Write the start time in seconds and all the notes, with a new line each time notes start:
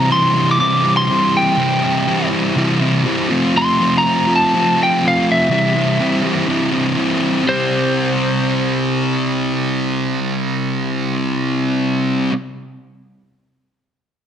Already playing: C3 C4 E4 A#5
0.09 E3 G3 C4 E4 C6
0.34 G3 C4 E4
0.51 D6
0.59 C3 E3 G3 C4 E4 D6
0.82 G3 C4 E4
0.97 C6
1.08 E3 G3 C4 E4
1.37 G5
1.57 C3 E3 G3 C4 E4
1.82 G3 C4 E4
2.06 E3 G3 C4 E4
2.29 G3 C4 E4
2.55 C3 E3 G3 C4 E4
2.79 G3 C4 E4
3.04 E3 G3 C4 E4
3.29 F3 A3 C4 F4
3.55 F3 A3 C4 F4 C6
3.79 A3 C4 F4
3.98 A#5
4.03 F3 A3 C4 F4
4.26 A3 C4 F4
4.36 A5
4.53 F3 A3 C4 F4
4.76 A3 C4 F4
4.83 G5
5.02 F3 A3 C4 F4
5.08 F5
5.32 E5
5.49 C3 E3 G3 C4 E4
5.73 G3 C4 E4
5.97 E3 G3 C4 E4
6.22 G3 C4 E4
6.47 C3 E3 G3 C4 E4
6.71 G3 C4 E4
6.96 E3 G3 C4 E4
7.44 C3 G3
7.48 C4 C5